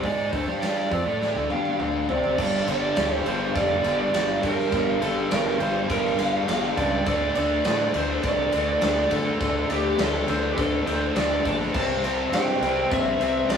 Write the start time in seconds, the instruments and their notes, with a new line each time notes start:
0.02 fingered electric bass G#2, overdriven electric guitar G#3 D#4 G#4, lead electric guitar D5, kick, open hi-hat
0.31 fingered electric bass D2, overdriven electric guitar D3 A3, lead electric guitar C5, kick, open hi-hat
0.47 fingered electric bass G2, overdriven electric guitar G3 D4 G4
0.60 lead electric guitar D5, snare, open hi-hat
0.91 fingered electric bass F2, overdriven electric guitar F3 C4, kick, open hi-hat
1.06 fingered electric bass A2, overdriven electric guitar A3 E4 A4
1.21 snare
1.35 fingered electric bass D2, overdriven electric guitar D3 A3
1.50 fingered electric bass G2, overdriven electric guitar G3 D4 G4, lead electric guitar F5, high tom
1.65 high tom
1.79 fingered electric bass D2, overdriven electric guitar D3 A3 D4, lead electric guitar F5, mid tom
2.09 fingered electric bass C3, overdriven electric guitar C4 G4 C5, lead electric guitar D5, floor tom
2.24 floor tom
2.38 fingered electric bass G1, overdriven electric guitar G2 D3 G3, lead electric guitar D5, kick, crash
2.67 fingered electric bass G1, overdriven electric guitar G2 D3 G3, lead electric guitar D5, ride
2.96 fingered electric bass D2, overdriven electric guitar G2 D3 G3, snare, ride
3.15 lead electric guitar C5
3.26 fingered electric bass G1, overdriven electric guitar G2 D3 G3, lead electric guitar C5, ride
3.54 fingered electric bass F1, overdriven electric guitar G2 D3 G3, lead electric guitar D5, kick, ride
3.84 fingered electric bass G1, overdriven electric guitar G2 D3 G3, ride
3.99 lead electric guitar D5
4.13 fingered electric bass G1, overdriven electric guitar G2 D3 G3, snare, ride
4.42 overdriven electric guitar G2 D3 G3, fingered electric bass G2, lead electric guitar A#4, kick, ride
4.59 snare
4.72 fingered electric bass G1, overdriven electric guitar G2 D3 G3, kick, ride
5.00 fingered electric bass G1, overdriven electric guitar G2 D3 G3, lead electric guitar A4, ride
5.30 fingered electric bass G1, overdriven electric guitar G2 D3 G3, lead electric guitar A#4, snare, ride
5.59 fingered electric bass G1, overdriven electric guitar G2 D3 G3, lead electric guitar C5, ride
5.88 fingered electric bass G1, overdriven electric guitar G2 D3 G3, lead electric guitar A#4, kick, ride
6.05 snare
6.18 fingered electric bass G1, overdriven electric guitar G2 D3 G3, lead electric guitar F5, ride
6.47 fingered electric bass G1, overdriven electric guitar G2 D3 G3, lead electric guitar F5, snare, ride
6.76 fingered electric bass C#2, overdriven electric guitar G2 D3 G3, lead electric guitar D5, kick, ride
7.06 fingered electric bass D2, overdriven electric guitar D3 A3 D4, lead electric guitar D5, kick, ride
7.35 fingered electric bass D2, overdriven electric guitar D3 A3 D4, lead electric guitar D5, ride
7.64 fingered electric bass A2, overdriven electric guitar D3 A3 D4, snare, ride
7.94 fingered electric bass D2, overdriven electric guitar D3 A3 D4, lead electric guitar C5, ride
8.22 fingered electric bass C2, overdriven electric guitar D3 A3 D4, lead electric guitar D5, kick, ride
8.52 fingered electric bass D2, overdriven electric guitar D3 A3 D4, ride
8.68 lead electric guitar D5
8.81 fingered electric bass D2, overdriven electric guitar D3 A3 D4, snare, ride
9.10 overdriven electric guitar D3 A3 D4, fingered electric bass D3, lead electric guitar A4, kick, ride
9.40 fingered electric bass D2, overdriven electric guitar D3 A3 D4, kick, ride
9.70 fingered electric bass D2, overdriven electric guitar D3 A3 D4, lead electric guitar G4, ride
9.98 fingered electric bass D2, overdriven electric guitar D3 A3 D4, lead electric guitar A4, snare, ride
10.28 fingered electric bass D2, overdriven electric guitar D3 A3 D4, lead electric guitar C5, ride
10.51 lead electric guitar G4
10.56 fingered electric bass D2, overdriven electric guitar D3 A3 D4, lead electric guitar A4, kick, ride
10.86 fingered electric bass D2, overdriven electric guitar D3 A3 D4, lead electric guitar C5, ride
11.15 fingered electric bass D2, overdriven electric guitar D3 A3 D4, lead electric guitar D5, snare, ride
11.44 fingered electric bass A#1, overdriven electric guitar D3 A3 D4, lead electric guitar A5, kick, ride
11.61 snare
11.74 fingered electric bass C2, overdriven electric guitar C3 G3 C4, lead electric guitar A5, kick, crash
12.01 fingered electric bass C2, overdriven electric guitar C3 G3 C4, ride
12.31 fingered electric bass G2, overdriven electric guitar C3 G3 C4, lead electric guitar G5, snare, ride
12.61 fingered electric bass C2, overdriven electric guitar C3 G3 C4, ride
12.91 fingered electric bass A#1, overdriven electric guitar C3 G3 C4, lead electric guitar E5, kick, ride
13.19 fingered electric bass C2, overdriven electric guitar C3 G3 C4, ride
13.49 fingered electric bass C2, overdriven electric guitar C3 G3 C4, lead electric guitar D5, snare, ride